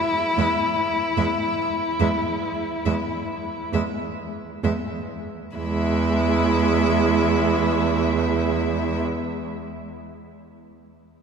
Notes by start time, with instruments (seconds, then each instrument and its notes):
Already playing: violin E4
0.38 cello E2, viola G#3, violin E5
1.17 cello E2, viola G#3, violin E5
2.00 cello E2, viola G#3, violin E5
2.86 cello E2, viola G#3, violin E5
3.73 cello E2, viola G#3, violin E5
4.64 cello E2, viola G#3, violin E5
5.57 cello E2, viola G#3, violin E4 E5